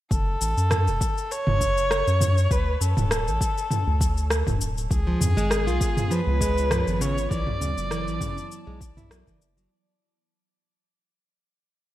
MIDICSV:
0, 0, Header, 1, 6, 480
1, 0, Start_track
1, 0, Key_signature, 3, "minor"
1, 0, Tempo, 600000
1, 87, Time_signature, 4, 2, 24, 8
1, 9558, End_track
2, 0, Start_track
2, 0, Title_t, "Kamancheh"
2, 0, Program_c, 0, 110
2, 90, Note_on_c, 0, 69, 92
2, 1051, Note_on_c, 0, 73, 106
2, 1063, Note_off_c, 0, 69, 0
2, 2010, Note_on_c, 0, 71, 94
2, 2022, Note_off_c, 0, 73, 0
2, 2249, Note_on_c, 0, 69, 85
2, 2261, Note_off_c, 0, 71, 0
2, 3688, Note_off_c, 0, 69, 0
2, 3931, Note_on_c, 0, 68, 87
2, 4889, Note_on_c, 0, 71, 99
2, 4901, Note_off_c, 0, 68, 0
2, 5608, Note_on_c, 0, 73, 101
2, 5620, Note_off_c, 0, 71, 0
2, 5844, Note_off_c, 0, 73, 0
2, 5848, Note_on_c, 0, 74, 107
2, 7256, Note_off_c, 0, 74, 0
2, 9558, End_track
3, 0, Start_track
3, 0, Title_t, "Ambient pad"
3, 0, Program_c, 1, 92
3, 3923, Note_on_c, 1, 59, 81
3, 4633, Note_on_c, 1, 65, 65
3, 4685, Note_on_c, 1, 68, 73
3, 4803, Note_on_c, 1, 73, 83
3, 5848, Note_off_c, 1, 65, 0
3, 5849, Note_off_c, 1, 73, 0
3, 5850, Note_off_c, 1, 68, 0
3, 5850, Note_on_c, 1, 54, 80
3, 6095, Note_on_c, 1, 64, 84
3, 6263, Note_on_c, 1, 81, 91
3, 6723, Note_on_c, 1, 74, 82
3, 7765, Note_off_c, 1, 59, 0
3, 7769, Note_off_c, 1, 54, 0
3, 7769, Note_off_c, 1, 74, 0
3, 7770, Note_off_c, 1, 64, 0
3, 7771, Note_off_c, 1, 81, 0
3, 9558, End_track
4, 0, Start_track
4, 0, Title_t, "Nylon-string guitar"
4, 0, Program_c, 2, 24
4, 4056, Note_on_c, 2, 53, 70
4, 4161, Note_off_c, 2, 53, 0
4, 4296, Note_on_c, 2, 56, 94
4, 4524, Note_off_c, 2, 56, 0
4, 4536, Note_on_c, 2, 65, 74
4, 4876, Note_off_c, 2, 65, 0
4, 4887, Note_on_c, 2, 53, 101
4, 4961, Note_off_c, 2, 53, 0
4, 5126, Note_on_c, 2, 56, 75
4, 5355, Note_off_c, 2, 56, 0
4, 5366, Note_on_c, 2, 53, 97
4, 5596, Note_off_c, 2, 53, 0
4, 5607, Note_on_c, 2, 49, 72
4, 5730, Note_off_c, 2, 49, 0
4, 5847, Note_on_c, 2, 52, 75
4, 5970, Note_off_c, 2, 52, 0
4, 6086, Note_on_c, 2, 49, 76
4, 6161, Note_off_c, 2, 49, 0
4, 6326, Note_on_c, 2, 52, 109
4, 6556, Note_off_c, 2, 52, 0
4, 6565, Note_on_c, 2, 49, 75
4, 6690, Note_off_c, 2, 49, 0
4, 6935, Note_on_c, 2, 56, 79
4, 7036, Note_off_c, 2, 56, 0
4, 7177, Note_on_c, 2, 64, 71
4, 7282, Note_off_c, 2, 64, 0
4, 7287, Note_on_c, 2, 54, 81
4, 7404, Note_off_c, 2, 54, 0
4, 7417, Note_on_c, 2, 52, 74
4, 7516, Note_off_c, 2, 52, 0
4, 7656, Note_on_c, 2, 54, 74
4, 7756, Note_off_c, 2, 54, 0
4, 9558, End_track
5, 0, Start_track
5, 0, Title_t, "Analog synth bass"
5, 0, Program_c, 3, 38
5, 87, Note_on_c, 3, 30, 104
5, 292, Note_off_c, 3, 30, 0
5, 328, Note_on_c, 3, 33, 93
5, 437, Note_off_c, 3, 33, 0
5, 458, Note_on_c, 3, 42, 86
5, 698, Note_on_c, 3, 28, 95
5, 710, Note_off_c, 3, 42, 0
5, 790, Note_off_c, 3, 28, 0
5, 1177, Note_on_c, 3, 30, 94
5, 1624, Note_off_c, 3, 30, 0
5, 1658, Note_on_c, 3, 42, 98
5, 1979, Note_off_c, 3, 42, 0
5, 2007, Note_on_c, 3, 38, 100
5, 2212, Note_off_c, 3, 38, 0
5, 2247, Note_on_c, 3, 42, 94
5, 2356, Note_off_c, 3, 42, 0
5, 2377, Note_on_c, 3, 26, 91
5, 2616, Note_on_c, 3, 33, 92
5, 2628, Note_off_c, 3, 26, 0
5, 2709, Note_off_c, 3, 33, 0
5, 3096, Note_on_c, 3, 38, 94
5, 3543, Note_off_c, 3, 38, 0
5, 3576, Note_on_c, 3, 26, 99
5, 3898, Note_off_c, 3, 26, 0
5, 3926, Note_on_c, 3, 37, 99
5, 4131, Note_off_c, 3, 37, 0
5, 4166, Note_on_c, 3, 41, 88
5, 4276, Note_off_c, 3, 41, 0
5, 4296, Note_on_c, 3, 32, 89
5, 4537, Note_on_c, 3, 35, 93
5, 4549, Note_off_c, 3, 32, 0
5, 4629, Note_off_c, 3, 35, 0
5, 5016, Note_on_c, 3, 37, 103
5, 5463, Note_off_c, 3, 37, 0
5, 5497, Note_on_c, 3, 32, 94
5, 5819, Note_off_c, 3, 32, 0
5, 5847, Note_on_c, 3, 35, 97
5, 6052, Note_off_c, 3, 35, 0
5, 6088, Note_on_c, 3, 38, 90
5, 6196, Note_off_c, 3, 38, 0
5, 6217, Note_on_c, 3, 30, 85
5, 6457, Note_on_c, 3, 33, 99
5, 6469, Note_off_c, 3, 30, 0
5, 6550, Note_off_c, 3, 33, 0
5, 6936, Note_on_c, 3, 35, 99
5, 7383, Note_off_c, 3, 35, 0
5, 7415, Note_on_c, 3, 30, 104
5, 7738, Note_off_c, 3, 30, 0
5, 9558, End_track
6, 0, Start_track
6, 0, Title_t, "Drums"
6, 87, Note_on_c, 9, 36, 106
6, 92, Note_on_c, 9, 69, 45
6, 167, Note_off_c, 9, 36, 0
6, 172, Note_off_c, 9, 69, 0
6, 331, Note_on_c, 9, 69, 73
6, 411, Note_off_c, 9, 69, 0
6, 461, Note_on_c, 9, 69, 30
6, 541, Note_off_c, 9, 69, 0
6, 566, Note_on_c, 9, 37, 96
6, 566, Note_on_c, 9, 45, 72
6, 572, Note_on_c, 9, 69, 41
6, 646, Note_off_c, 9, 37, 0
6, 646, Note_off_c, 9, 45, 0
6, 652, Note_off_c, 9, 69, 0
6, 701, Note_on_c, 9, 69, 28
6, 781, Note_off_c, 9, 69, 0
6, 807, Note_on_c, 9, 36, 96
6, 812, Note_on_c, 9, 69, 68
6, 887, Note_off_c, 9, 36, 0
6, 892, Note_off_c, 9, 69, 0
6, 942, Note_on_c, 9, 69, 29
6, 1022, Note_off_c, 9, 69, 0
6, 1052, Note_on_c, 9, 69, 41
6, 1132, Note_off_c, 9, 69, 0
6, 1176, Note_on_c, 9, 45, 74
6, 1256, Note_off_c, 9, 45, 0
6, 1287, Note_on_c, 9, 36, 61
6, 1291, Note_on_c, 9, 69, 74
6, 1367, Note_off_c, 9, 36, 0
6, 1371, Note_off_c, 9, 69, 0
6, 1421, Note_on_c, 9, 69, 30
6, 1501, Note_off_c, 9, 69, 0
6, 1526, Note_on_c, 9, 37, 106
6, 1532, Note_on_c, 9, 69, 44
6, 1606, Note_off_c, 9, 37, 0
6, 1612, Note_off_c, 9, 69, 0
6, 1661, Note_on_c, 9, 69, 30
6, 1741, Note_off_c, 9, 69, 0
6, 1766, Note_on_c, 9, 45, 76
6, 1772, Note_on_c, 9, 69, 75
6, 1846, Note_off_c, 9, 45, 0
6, 1852, Note_off_c, 9, 69, 0
6, 1901, Note_on_c, 9, 69, 31
6, 1981, Note_off_c, 9, 69, 0
6, 2006, Note_on_c, 9, 36, 121
6, 2010, Note_on_c, 9, 69, 44
6, 2086, Note_off_c, 9, 36, 0
6, 2090, Note_off_c, 9, 69, 0
6, 2252, Note_on_c, 9, 69, 75
6, 2332, Note_off_c, 9, 69, 0
6, 2376, Note_on_c, 9, 45, 69
6, 2382, Note_on_c, 9, 69, 31
6, 2456, Note_off_c, 9, 45, 0
6, 2462, Note_off_c, 9, 69, 0
6, 2487, Note_on_c, 9, 37, 102
6, 2493, Note_on_c, 9, 69, 47
6, 2567, Note_off_c, 9, 37, 0
6, 2573, Note_off_c, 9, 69, 0
6, 2623, Note_on_c, 9, 69, 29
6, 2703, Note_off_c, 9, 69, 0
6, 2726, Note_on_c, 9, 36, 99
6, 2733, Note_on_c, 9, 69, 76
6, 2806, Note_off_c, 9, 36, 0
6, 2813, Note_off_c, 9, 69, 0
6, 2863, Note_on_c, 9, 69, 33
6, 2943, Note_off_c, 9, 69, 0
6, 2965, Note_on_c, 9, 45, 68
6, 2971, Note_on_c, 9, 69, 43
6, 3045, Note_off_c, 9, 45, 0
6, 3051, Note_off_c, 9, 69, 0
6, 3206, Note_on_c, 9, 36, 114
6, 3211, Note_on_c, 9, 69, 75
6, 3286, Note_off_c, 9, 36, 0
6, 3291, Note_off_c, 9, 69, 0
6, 3340, Note_on_c, 9, 69, 32
6, 3420, Note_off_c, 9, 69, 0
6, 3444, Note_on_c, 9, 37, 105
6, 3450, Note_on_c, 9, 69, 46
6, 3524, Note_off_c, 9, 37, 0
6, 3530, Note_off_c, 9, 69, 0
6, 3574, Note_on_c, 9, 45, 76
6, 3576, Note_on_c, 9, 36, 58
6, 3580, Note_on_c, 9, 69, 31
6, 3654, Note_off_c, 9, 45, 0
6, 3656, Note_off_c, 9, 36, 0
6, 3660, Note_off_c, 9, 69, 0
6, 3690, Note_on_c, 9, 69, 81
6, 3770, Note_off_c, 9, 69, 0
6, 3821, Note_on_c, 9, 69, 30
6, 3901, Note_off_c, 9, 69, 0
6, 3926, Note_on_c, 9, 36, 109
6, 3930, Note_on_c, 9, 69, 45
6, 4006, Note_off_c, 9, 36, 0
6, 4010, Note_off_c, 9, 69, 0
6, 4166, Note_on_c, 9, 45, 67
6, 4172, Note_on_c, 9, 69, 79
6, 4246, Note_off_c, 9, 45, 0
6, 4252, Note_off_c, 9, 69, 0
6, 4302, Note_on_c, 9, 69, 31
6, 4382, Note_off_c, 9, 69, 0
6, 4406, Note_on_c, 9, 37, 104
6, 4412, Note_on_c, 9, 69, 48
6, 4486, Note_off_c, 9, 37, 0
6, 4492, Note_off_c, 9, 69, 0
6, 4542, Note_on_c, 9, 69, 29
6, 4622, Note_off_c, 9, 69, 0
6, 4647, Note_on_c, 9, 36, 109
6, 4650, Note_on_c, 9, 69, 73
6, 4727, Note_off_c, 9, 36, 0
6, 4730, Note_off_c, 9, 69, 0
6, 4775, Note_on_c, 9, 45, 73
6, 4781, Note_on_c, 9, 69, 36
6, 4855, Note_off_c, 9, 45, 0
6, 4861, Note_off_c, 9, 69, 0
6, 4891, Note_on_c, 9, 69, 43
6, 4971, Note_off_c, 9, 69, 0
6, 5127, Note_on_c, 9, 36, 67
6, 5133, Note_on_c, 9, 69, 80
6, 5207, Note_off_c, 9, 36, 0
6, 5213, Note_off_c, 9, 69, 0
6, 5262, Note_on_c, 9, 69, 32
6, 5342, Note_off_c, 9, 69, 0
6, 5367, Note_on_c, 9, 37, 104
6, 5367, Note_on_c, 9, 45, 77
6, 5373, Note_on_c, 9, 69, 50
6, 5447, Note_off_c, 9, 37, 0
6, 5447, Note_off_c, 9, 45, 0
6, 5453, Note_off_c, 9, 69, 0
6, 5501, Note_on_c, 9, 69, 33
6, 5581, Note_off_c, 9, 69, 0
6, 5613, Note_on_c, 9, 69, 81
6, 5693, Note_off_c, 9, 69, 0
6, 5742, Note_on_c, 9, 69, 32
6, 5822, Note_off_c, 9, 69, 0
6, 5847, Note_on_c, 9, 36, 117
6, 5852, Note_on_c, 9, 69, 45
6, 5927, Note_off_c, 9, 36, 0
6, 5932, Note_off_c, 9, 69, 0
6, 5976, Note_on_c, 9, 45, 72
6, 6056, Note_off_c, 9, 45, 0
6, 6094, Note_on_c, 9, 69, 73
6, 6174, Note_off_c, 9, 69, 0
6, 6222, Note_on_c, 9, 69, 33
6, 6302, Note_off_c, 9, 69, 0
6, 6328, Note_on_c, 9, 37, 93
6, 6333, Note_on_c, 9, 69, 47
6, 6408, Note_off_c, 9, 37, 0
6, 6413, Note_off_c, 9, 69, 0
6, 6462, Note_on_c, 9, 69, 30
6, 6542, Note_off_c, 9, 69, 0
6, 6566, Note_on_c, 9, 36, 101
6, 6566, Note_on_c, 9, 45, 69
6, 6571, Note_on_c, 9, 69, 75
6, 6646, Note_off_c, 9, 36, 0
6, 6646, Note_off_c, 9, 45, 0
6, 6651, Note_off_c, 9, 69, 0
6, 6702, Note_on_c, 9, 69, 33
6, 6782, Note_off_c, 9, 69, 0
6, 6812, Note_on_c, 9, 69, 45
6, 6892, Note_off_c, 9, 69, 0
6, 7046, Note_on_c, 9, 36, 110
6, 7052, Note_on_c, 9, 69, 78
6, 7126, Note_off_c, 9, 36, 0
6, 7132, Note_off_c, 9, 69, 0
6, 7177, Note_on_c, 9, 45, 70
6, 7182, Note_on_c, 9, 69, 33
6, 7257, Note_off_c, 9, 45, 0
6, 7262, Note_off_c, 9, 69, 0
6, 7287, Note_on_c, 9, 37, 102
6, 7293, Note_on_c, 9, 69, 49
6, 7367, Note_off_c, 9, 37, 0
6, 7373, Note_off_c, 9, 69, 0
6, 7415, Note_on_c, 9, 36, 56
6, 7421, Note_on_c, 9, 69, 31
6, 7495, Note_off_c, 9, 36, 0
6, 7501, Note_off_c, 9, 69, 0
6, 7533, Note_on_c, 9, 69, 80
6, 7613, Note_off_c, 9, 69, 0
6, 7662, Note_on_c, 9, 69, 35
6, 7742, Note_off_c, 9, 69, 0
6, 9558, End_track
0, 0, End_of_file